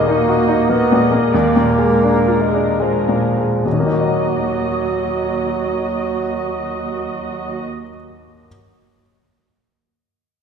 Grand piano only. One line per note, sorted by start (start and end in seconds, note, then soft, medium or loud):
0.00 1.29 D#2 soft
0.00 0.92 A#2 soft
0.00 0.20 A#3 soft
0.09 0.41 D#4 soft
0.29 0.61 F#4 soft
0.48 0.82 D#4 soft
0.69 1.03 A#3 soft
0.92 1.25 A#2 soft
1.11 1.33 A#3 soft
1.34 3.62 D#2 soft
1.56 1.94 A#2 soft
1.78 2.18 G#3 soft
2.03 2.43 D4 soft
2.27 2.69 F4 soft
2.54 2.97 D4 soft
2.80 3.26 G#3 soft
3.08 3.54 A#2 soft
3.37 3.65 G#3 soft
3.65 7.61 D#2 soft
3.72 7.68 D#3 soft
3.79 7.75 A#3 soft
3.86 7.82 D#4 soft
3.93 7.89 F#4 soft
4.00 7.96 D#5 soft